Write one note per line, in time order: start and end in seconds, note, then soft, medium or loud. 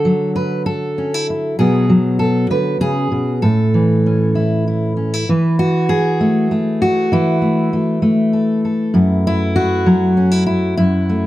0.00 1.55 D3 medium
0.00 0.35 A4 medium
0.05 1.55 F#3 medium
0.36 0.66 B4 medium
0.66 1.58 A4 medium
0.98 1.14 C#4 soft
1.14 1.29 E4 soft
1.30 1.56 E4 soft
1.59 2.50 B2 medium
1.59 1.88 F#3 soft
1.59 3.39 B3 soft
1.59 2.19 G#4 medium
1.90 3.38 F#3 medium
2.19 2.50 A4 medium
2.50 2.80 D3 medium
2.50 2.81 B4 medium
2.81 3.11 C#3 soft
2.81 3.42 G#4 medium
3.11 3.42 B2 soft
3.42 5.24 A2 medium
3.42 5.27 A4 medium
3.74 5.28 E3 medium
4.06 4.95 C#4 soft
4.35 4.66 E4 soft
4.67 4.96 E4 soft
4.97 5.14 C#4 soft
5.14 5.28 E4 soft
5.29 7.11 E3 medium
5.29 5.59 B4 soft
5.59 6.51 F#4 loud
5.89 7.12 G#4 medium
6.20 6.51 A3 medium
6.51 7.41 A3 soft
6.82 7.73 F#4 medium
7.12 9.86 E3 medium
7.12 8.93 E4 medium
7.42 7.73 A3 soft
7.73 8.02 A3 soft
8.02 10.78 A3 medium
8.33 8.64 A4 soft
8.65 9.55 A4 soft
8.94 10.77 F#2 medium
8.94 9.27 E4 soft
9.27 10.17 E4 loud
9.56 11.09 F#4 loud
9.86 10.75 F#3 medium
10.17 10.31 C#4 soft
10.31 10.45 E4 soft
10.46 10.76 E4 medium
10.77 11.27 F#2 medium
10.77 11.27 E4 medium
11.09 11.27 A3 soft